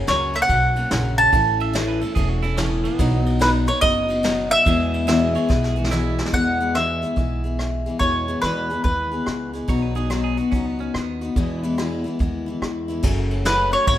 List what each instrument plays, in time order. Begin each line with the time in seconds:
0.07 upright bass C#2, steel-string acoustic guitar F#2 C#3 F#3 A#3 C#4 F#4, mandolin C#5, snare, ride
0.34 steel-string acoustic guitar F#3 A#3 C#4 F#4, mandolin E5, ride
0.42 mandolin F#5
0.48 upright bass B1, steel-string acoustic guitar F#3 A#3 C#4 F#4, kick, ride
0.76 steel-string acoustic guitar F#3 A#3 C#4 F#4, ride
0.91 upright bass A#1, steel-string acoustic guitar F#2 C#3 F#3 A#3 C#4 F#4, snare, ride
1.18 mandolin A5, ride
1.32 upright bass A1, steel-string acoustic guitar A2 E3 A3 C#4 A4, kick, ride
1.60 clean electric guitar E5, ride
1.73 steel-string acoustic guitar A2 E3 A3 C#4 A4, clean electric guitar C#5, snare, ride
1.88 clean electric guitar B4
2.01 steel-string acoustic guitar A3 C#4 A4, clean electric guitar A4, ride
2.15 upright bass E1, steel-string acoustic guitar E3 A3 C#4 A4, clean electric guitar G#4, kick, ride
2.29 clean electric guitar F#4
2.42 steel-string acoustic guitar A3 C#4 A4, clean electric guitar E4, ride
2.57 steel-string acoustic guitar A2 E3 A3 C#4 A4, clean electric guitar C#4, snare, ride
2.70 clean electric guitar B3
2.84 clean electric guitar B3, ride
2.99 upright bass B1, steel-string acoustic guitar B2 F#3 B3 D#4 F#4, kick, ride
3.26 ride
3.39 steel-string acoustic guitar B2 F#3 B3 D#4 F#4, mandolin B4, snare, ride
3.67 steel-string acoustic guitar B3 D#4 F#4, mandolin C#5, ride
3.81 upright bass F#1, steel-string acoustic guitar F#3 B3 D#4 F#4, mandolin D#5, kick, ride
4.08 steel-string acoustic guitar B3 D#4 F#4, ride
4.23 steel-string acoustic guitar B2 F#3 B3 D#4 F#4, snare, ride
4.51 mandolin E5, ride
4.65 steel-string acoustic guitar E2 B2 E3 G#3 B3 G#4, upright bass E2, kick, ride
4.94 ride
5.07 steel-string acoustic guitar E2 B2 E3 G#3 B3 G#4, clean electric guitar E5, snare, ride
5.35 steel-string acoustic guitar E3 G#3 B3 G#4, clean electric guitar C#5, ride
5.49 upright bass B1, steel-string acoustic guitar E3 G#3 B3 G#4, clean electric guitar B4, kick, snare
5.64 clean electric guitar G#4, snare
5.76 steel-string acoustic guitar E3 G#3 B3 G#4, clean electric guitar F#4
5.84 snare
5.91 steel-string acoustic guitar E2 B2 E3 G#3 B3 G#4, clean electric guitar E4, snare
6.19 snare
6.26 snare
6.33 upright bass E2, steel-string acoustic guitar E2 B2 E3 G#3 B3 G#4, mandolin F#5, kick, closed hi-hat
6.60 steel-string acoustic guitar E2 B2 E3 G#3 B3 G#4
6.75 steel-string acoustic guitar E2 B2 E3 G#3 B3 G#4, mandolin E5, cross-stick, closed hi-hat
7.02 steel-string acoustic guitar E3 G#3 B3 G#4, closed hi-hat
7.16 upright bass B1, steel-string acoustic guitar E3 G#3 B3 G#4, kick, closed hi-hat
7.44 steel-string acoustic guitar E3 G#3 B3 G#4
7.59 cross-stick, closed hi-hat
7.86 steel-string acoustic guitar E3 G#3 B3 G#4, closed hi-hat
7.99 upright bass E2, steel-string acoustic guitar E2 B2 E3 G#3 B3 G#4, mandolin C#5, kick, closed hi-hat
8.28 steel-string acoustic guitar E2 B2 E3 G#3 B3 G#4
8.42 steel-string acoustic guitar E2 B2 E3 G#3 B3 G#4, upright bass E2, mandolin B4, cross-stick, closed hi-hat
8.70 steel-string acoustic guitar E3 G#3 B3 G#4, closed hi-hat
8.84 upright bass D#2, steel-string acoustic guitar E3 G#3 B3 G#4, mandolin B4, kick, closed hi-hat
9.12 steel-string acoustic guitar E3 G#3 B3 G#4
9.26 upright bass C#2, cross-stick, closed hi-hat
9.53 steel-string acoustic guitar E3 G#3 B3 G#4, closed hi-hat
9.68 upright bass B1, steel-string acoustic guitar B2 F#3 B3 D#4 F#4, clean electric guitar C#5, kick, closed hi-hat
9.82 clean electric guitar B4
9.95 steel-string acoustic guitar B2 F#3 B3 D#4 F#4, clean electric guitar G#4
10.10 steel-string acoustic guitar B2 F#3 B3 D#4 F#4, clean electric guitar F#4, cross-stick, closed hi-hat
10.24 clean electric guitar G#4
10.37 steel-string acoustic guitar B3 D#4 F#4, clean electric guitar F#4, closed hi-hat
10.51 upright bass C#2, steel-string acoustic guitar F#3 B3 D#4 F#4, clean electric guitar C#4, kick, closed hi-hat
10.66 clean electric guitar B3
10.79 steel-string acoustic guitar B3 D#4 F#4, clean electric guitar C#4
10.94 upright bass D#2, clean electric guitar B3, cross-stick, closed hi-hat
11.21 steel-string acoustic guitar B3 D#4 F#4, closed hi-hat
11.36 upright bass E2, steel-string acoustic guitar E2 B2 E3 G#3 B3 E4, kick, closed hi-hat
11.63 steel-string acoustic guitar E2 B2 E3 G#3 B3 E4
11.78 steel-string acoustic guitar E2 B2 E3 G#3 B3 E4, cross-stick, closed hi-hat
12.04 steel-string acoustic guitar E3 G#3 B3 E4, closed hi-hat
12.19 upright bass D#2, steel-string acoustic guitar E3 G#3 B3 E4, kick, closed hi-hat
12.46 steel-string acoustic guitar E3 G#3 B3 E4
12.62 upright bass E2, cross-stick, closed hi-hat
12.88 steel-string acoustic guitar E3 G#3 B3 E4, closed hi-hat
13.03 upright bass F#1, steel-string acoustic guitar F#2 C#3 F#3 A3 C#4 F#4, kick, crash
13.31 ride
13.45 steel-string acoustic guitar F#2 C#3 F#3 A3 C#4 F#4, mandolin B4, snare, ride
13.72 steel-string acoustic guitar F#3 A3 C#4 F#4, mandolin C#5, ride
13.87 upright bass G#1, steel-string acoustic guitar F#3 A3 C#4 F#4, mandolin C#5, kick, ride